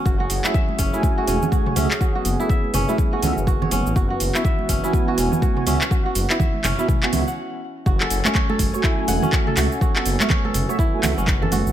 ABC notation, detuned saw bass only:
X:1
M:4/4
L:1/16
Q:"Swing 16ths" 1/4=123
K:Emix
V:1 name="Detuned saw bass" clef=bass
F,,, z F,,, z3 F,,, z3 E,,, z3 C,, z | z2 F,,, z3 F,,, z3 C,, F,,,3 F,,, A,,, | F,,, z F,,, z3 F,,, z3 E,,, z3 C,, z | z2 F,,, z3 F,,, z3 C,, z4 z |
F,,, z F,,, z3 F,,, z3 E,,, z3 C,, z | z2 F,,, z3 F,,, z3 C,, F,,,3 F,,, A,,, |]